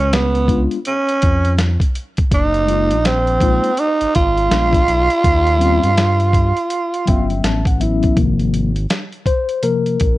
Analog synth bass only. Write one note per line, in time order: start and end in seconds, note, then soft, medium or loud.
0.00 0.68 C#2 medium
1.23 1.78 F2 medium
2.32 2.93 F#1 loud
2.91 3.60 A#1 medium
4.01 4.07 G#1 medium
4.16 4.49 G#1 medium
4.51 4.84 A#1 loud
4.88 5.09 B1 loud
5.24 5.80 D#2 loud
5.84 6.53 G2 medium
7.08 7.41 G1 medium
7.44 8.13 A1 medium
8.17 8.86 G#1 loud
10.01 10.18 A#1 medium